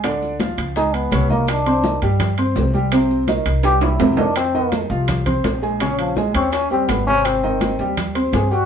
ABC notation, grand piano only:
X:1
M:4/4
L:1/8
Q:1/4=166
K:Cm
V:1 name="Grand piano"
[D,Dd]2 [F,Ff]2 [A,Aa]2 [_D,_D_d] [E,Ee]- | [E,Ee] [Ccc'] [E,Ee] [G,Gg]2 [Ccc']2 [G,Gg] | [C,Cc]2 [E,Ee]2 [G,Gg]2 [C,Cc] [E,Ee] | z [E,Ee]2 [F,Ff]2 [Ccc']2 [A,Aa] |
[_D,_D_d]2 [A,Aa] [Dd_d']2 [G,Gg]2 [C,Cc]- | [C,Cc] [E,Ee]2 [G,Gg]2 [Ccc']2 [G,Gg] |]